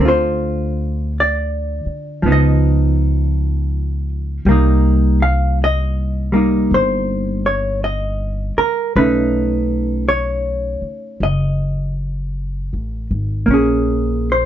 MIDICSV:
0, 0, Header, 1, 4, 480
1, 0, Start_track
1, 0, Time_signature, 4, 2, 24, 8
1, 0, Tempo, 1119403
1, 3839, Tempo, 1129944
1, 6176, End_track
2, 0, Start_track
2, 0, Title_t, "Hollow-body jazz guitar"
2, 0, Program_c, 0, 26
2, 0, Note_on_c, 0, 50, 33
2, 4, Note_on_c, 0, 60, 34
2, 22, Note_on_c, 0, 65, 35
2, 33, Note_on_c, 0, 68, 34
2, 34, Note_off_c, 0, 68, 0
2, 36, Note_on_c, 0, 72, 63
2, 481, Note_off_c, 0, 72, 0
2, 516, Note_on_c, 0, 74, 66
2, 952, Note_off_c, 0, 50, 0
2, 954, Note_on_c, 0, 53, 33
2, 962, Note_off_c, 0, 60, 0
2, 969, Note_on_c, 0, 59, 31
2, 971, Note_off_c, 0, 65, 0
2, 976, Note_on_c, 0, 63, 34
2, 991, Note_off_c, 0, 74, 0
2, 995, Note_on_c, 0, 75, 62
2, 1754, Note_off_c, 0, 75, 0
2, 1913, Note_off_c, 0, 53, 0
2, 1914, Note_on_c, 0, 55, 37
2, 1922, Note_off_c, 0, 59, 0
2, 1924, Note_on_c, 0, 58, 44
2, 1925, Note_off_c, 0, 63, 0
2, 1934, Note_on_c, 0, 63, 46
2, 2240, Note_on_c, 0, 77, 70
2, 2389, Note_off_c, 0, 77, 0
2, 2418, Note_on_c, 0, 75, 76
2, 2706, Note_off_c, 0, 55, 0
2, 2711, Note_on_c, 0, 55, 28
2, 2712, Note_off_c, 0, 58, 0
2, 2717, Note_on_c, 0, 58, 33
2, 2719, Note_off_c, 0, 63, 0
2, 2724, Note_on_c, 0, 63, 32
2, 2890, Note_off_c, 0, 75, 0
2, 2892, Note_on_c, 0, 72, 72
2, 3198, Note_off_c, 0, 72, 0
2, 3199, Note_on_c, 0, 73, 63
2, 3350, Note_off_c, 0, 73, 0
2, 3362, Note_on_c, 0, 75, 67
2, 3661, Note_off_c, 0, 75, 0
2, 3679, Note_on_c, 0, 70, 64
2, 3840, Note_off_c, 0, 55, 0
2, 3842, Note_off_c, 0, 58, 0
2, 3842, Note_off_c, 0, 70, 0
2, 3844, Note_on_c, 0, 61, 36
2, 3844, Note_on_c, 0, 71, 68
2, 3846, Note_off_c, 0, 63, 0
2, 3846, Note_on_c, 0, 57, 33
2, 3851, Note_on_c, 0, 63, 37
2, 4304, Note_off_c, 0, 71, 0
2, 4320, Note_on_c, 0, 73, 65
2, 4806, Note_off_c, 0, 73, 0
2, 4808, Note_on_c, 0, 75, 61
2, 5587, Note_off_c, 0, 75, 0
2, 5752, Note_off_c, 0, 57, 0
2, 5754, Note_on_c, 0, 58, 34
2, 5765, Note_off_c, 0, 61, 0
2, 5769, Note_off_c, 0, 63, 0
2, 5773, Note_on_c, 0, 61, 37
2, 5786, Note_on_c, 0, 68, 38
2, 6118, Note_on_c, 0, 72, 57
2, 6176, Note_off_c, 0, 58, 0
2, 6176, Note_off_c, 0, 61, 0
2, 6176, Note_off_c, 0, 68, 0
2, 6176, Note_off_c, 0, 72, 0
2, 6176, End_track
3, 0, Start_track
3, 0, Title_t, "Upright bass"
3, 0, Program_c, 1, 32
3, 0, Note_on_c, 1, 38, 59
3, 777, Note_off_c, 1, 38, 0
3, 957, Note_on_c, 1, 37, 62
3, 1898, Note_off_c, 1, 37, 0
3, 1909, Note_on_c, 1, 36, 66
3, 2857, Note_off_c, 1, 36, 0
3, 2876, Note_on_c, 1, 31, 57
3, 3658, Note_off_c, 1, 31, 0
3, 3840, Note_on_c, 1, 35, 67
3, 4618, Note_off_c, 1, 35, 0
3, 4795, Note_on_c, 1, 30, 56
3, 5424, Note_off_c, 1, 30, 0
3, 5443, Note_on_c, 1, 33, 42
3, 5593, Note_off_c, 1, 33, 0
3, 5603, Note_on_c, 1, 32, 52
3, 5753, Note_off_c, 1, 32, 0
3, 5762, Note_on_c, 1, 34, 62
3, 6176, Note_off_c, 1, 34, 0
3, 6176, End_track
4, 0, Start_track
4, 0, Title_t, "Muted upright bass strokes"
4, 796, Note_on_c, 9, 29, 27
4, 839, Note_off_c, 9, 29, 0
4, 3676, Note_on_c, 9, 29, 31
4, 3719, Note_off_c, 9, 29, 0
4, 4629, Note_on_c, 9, 29, 26
4, 4672, Note_off_c, 9, 29, 0
4, 6176, End_track
0, 0, End_of_file